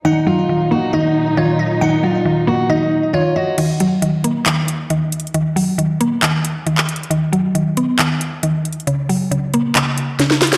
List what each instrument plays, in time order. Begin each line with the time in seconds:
0.05 string section A#2 D#3 F#3 D#4, synth pluck D#3 F#5, steel-string acoustic guitar D#4
0.27 synth pluck F#3, steel-string acoustic guitar F4
0.49 synth pluck D#3
0.71 synth pluck A#3, steel-string acoustic guitar F#4
0.93 synth pluck D#3 D#5, steel-string acoustic guitar D#4
1.37 synth pluck D#3 C#5, steel-string acoustic guitar F4
1.59 synth pluck D#5
1.81 synth pluck D#3 F#5, steel-string acoustic guitar D#4
2.03 synth pluck F#3, steel-string acoustic guitar F4
2.25 synth pluck D#3
2.47 synth pluck A#3, steel-string acoustic guitar F#4
2.69 synth pluck D#3 D#5, steel-string acoustic guitar D#4
3.13 synth pluck D#3 C#5, steel-string acoustic guitar F4
3.36 steel-string acoustic guitar F#4, synth pluck D#5
3.58 synth pluck D#3, closed hi-hat, crash
3.80 synth pluck F#3, closed hi-hat
4.02 synth pluck D#3, closed hi-hat
4.24 synth pluck A#3, closed hi-hat
4.46 synth pluck D#3, clap, closed hi-hat
4.68 closed hi-hat
4.90 synth pluck D#3, closed hi-hat
5.12 closed hi-hat
5.20 closed hi-hat
5.27 closed hi-hat
5.34 synth pluck D#3, closed hi-hat
5.56 synth pluck F#3, open hi-hat
5.78 synth pluck D#3, closed hi-hat
6.01 synth pluck A#3, closed hi-hat
6.23 synth pluck D#3, clap, closed hi-hat
6.45 closed hi-hat
6.67 synth pluck D#3, closed hi-hat
6.78 clap
6.89 closed hi-hat
6.96 closed hi-hat
7.03 closed hi-hat
7.10 synth pluck D#3, closed hi-hat
7.33 synth pluck F#3, closed hi-hat
7.55 synth pluck D#3, closed hi-hat
7.77 synth pluck B3, closed hi-hat
7.99 synth pluck D#3, clap, closed hi-hat
8.21 closed hi-hat
8.43 synth pluck D#3, closed hi-hat
8.65 closed hi-hat
8.73 closed hi-hat
8.80 closed hi-hat
8.87 synth pluck C#3, closed hi-hat
9.09 synth pluck F#3, open hi-hat
9.31 synth pluck C#3, closed hi-hat
9.54 synth pluck A#3, closed hi-hat
9.75 synth pluck C#3, clap, closed hi-hat
9.98 closed hi-hat
10.19 synth pluck C#3, snare, closed hi-hat
10.31 snare
10.42 snare, closed hi-hat
10.47 closed hi-hat
10.53 snare, closed hi-hat